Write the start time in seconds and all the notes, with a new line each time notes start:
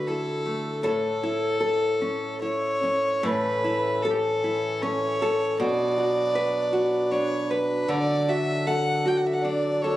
Already playing: D3 A3 F#4
0.07 E4 A4
0.46 A3
0.83 A2 A4
1.23 E4
1.60 A4
2.01 C#4
2.41 E4 C#5
2.83 C#4
3.22 A2 E3 C#4 A4 B4
3.64 E4
4.02 A4
4.10 G4
4.16 A4
4.44 E4
4.82 C#4 C#5
5.22 A4
5.57 B2 F#3 D4 B4 D5
5.98 F#4
6.35 B4
6.73 F#4
7.11 D4 C#5
7.50 B4
7.86 D3 F#3 A4 D5
8.28 F#4 E5
8.67 A4 F#5
9.06 F#4 G5
9.17 F#5
9.27 E5
9.33 F#5
9.42 D4 D5
9.82 A4 C#5